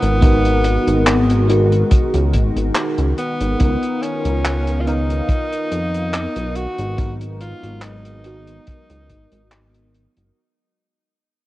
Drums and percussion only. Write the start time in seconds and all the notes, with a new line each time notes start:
0.02 closed hi-hat
0.22 kick, closed hi-hat
0.45 closed hi-hat
0.64 closed hi-hat
0.87 closed hi-hat
1.06 clap, closed hi-hat
1.30 closed hi-hat
1.49 closed hi-hat
1.72 closed hi-hat
1.91 kick, closed hi-hat
2.14 closed hi-hat
2.33 kick, closed hi-hat
2.57 closed hi-hat
2.75 clap, closed hi-hat
2.98 closed hi-hat
3.18 closed hi-hat
3.40 closed hi-hat
3.60 kick, closed hi-hat
3.83 closed hi-hat
4.03 closed hi-hat
4.25 closed hi-hat
4.45 clap, closed hi-hat
4.67 closed hi-hat
4.87 closed hi-hat
5.10 closed hi-hat
5.29 kick, closed hi-hat
5.53 closed hi-hat
5.72 closed hi-hat
5.94 closed hi-hat
6.14 clap, closed hi-hat
6.36 closed hi-hat
6.56 closed hi-hat
6.78 closed hi-hat
6.98 kick, closed hi-hat
7.21 closed hi-hat
7.41 closed hi-hat
7.63 closed hi-hat
7.82 clap, closed hi-hat
8.05 closed hi-hat
8.24 closed hi-hat
8.47 closed hi-hat
8.67 kick, closed hi-hat
8.90 closed hi-hat
9.10 kick, closed hi-hat
9.32 closed hi-hat
9.51 clap, closed hi-hat
9.74 closed hi-hat
9.95 closed hi-hat
10.17 closed hi-hat